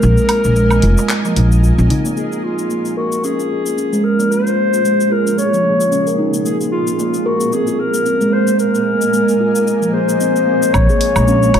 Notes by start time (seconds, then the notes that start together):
Already playing: A#3 A#4 D#5 G#5
0.02 A#1, shaker
0.17 shaker
0.29 open hi-hat, low woodblock
0.44 A#1, shaker
0.56 G#3, shaker
0.71 darbuka ka, low woodblock, shaker
0.82 F1 F4, open hi-hat
0.98 darbuka ka, darbuka tek, shaker
1.09 clap, shaker
1.25 F3, darbuka ka, shaker
1.36 A#1 F4, open hi-hat, darbuka tek
1.52 shaker
1.63 F4, shaker
1.78 A#1 C4, darbuka ka, darbuka tek, shaker
1.90 D#4, open hi-hat, darbuka dum
2.05 A#3, shaker
2.17 A#3 G#4, shaker
2.26 F4
2.32 G#4, shaker
2.42 F4 G#4
2.59 shaker
2.70 A#3, shaker
2.85 shaker
2.97 F#4 A#4
3.12 shaker
3.24 C#4 G#4, shaker
3.39 F4, shaker
3.51 G#4
3.66 A#3, shaker
3.77 C#4, shaker
3.93 G#3, shaker
4.04 A#4
4.10 C#4
4.19 A#3, shaker
4.31 C5, shaker
4.47 shaker
4.74 shaker
4.85 G#3, shaker
5.00 shaker
5.12 F4 A#4
5.27 shaker
5.38 C#5, shaker
5.53 F3, shaker
5.65 A#3
5.81 shaker
5.92 C#4, shaker
6.07 A#4, shaker
6.19 D#4
6.34 shaker
6.45 A#3 G#4, shaker
6.61 G#4, shaker
6.71 F4 G#4
6.87 shaker
6.95 A#4
6.99 A#3, shaker
7.14 shaker
7.26 F#4 A#4
7.41 shaker
7.53 C4 G#4 G#5, shaker
7.67 F4 D#5, shaker
7.79 G#4 A#4
7.94 A#3, shaker
8.06 C4, shaker
8.21 G#3, shaker
8.33 C5
8.47 A#3, shaker
8.59 A#4, shaker
8.75 shaker
9.02 shaker
9.13 G#3, shaker
9.29 shaker
9.40 F4
9.55 shaker
9.67 shaker
9.82 F3, shaker
9.93 G#4 C5
10.09 shaker
10.21 C4, shaker
10.36 shaker
10.48 C4
10.63 A#3, shaker
10.73 A#1 A#3 C#5, kick, low woodblock, shaker
10.89 G#4, shaker
10.94 F4
11.01 G#4, open hi-hat
11.16 A#1 G#3, low woodblock, shaker
11.28 C#4, shaker
11.43 G#3, darbuka ka, shaker
11.54 F1 F4, kick, open hi-hat, low woodblock